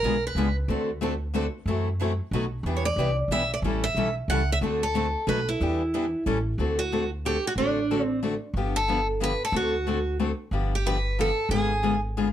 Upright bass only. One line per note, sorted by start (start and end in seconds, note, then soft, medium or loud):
0.03 0.31 B1 medium
0.35 0.63 C#2 medium
0.68 1.47 D2 medium
1.66 2.19 F#2 medium
2.31 2.58 B1 medium
2.63 2.90 E2 medium
2.96 3.25 C2 medium
3.28 3.57 B1 medium
3.62 3.89 A1 medium
3.95 4.23 B1 medium
4.28 4.56 C#2 medium
4.61 5.14 D2 medium
5.27 5.54 B1 medium
5.60 6.13 E2 medium
6.26 6.52 A1 medium
6.58 7.37 D2 medium
7.56 8.35 A1 medium
8.54 9.33 G1 medium
9.52 10.32 D2 medium
10.51 11.30 G1 medium
11.49 12.28 G#1 medium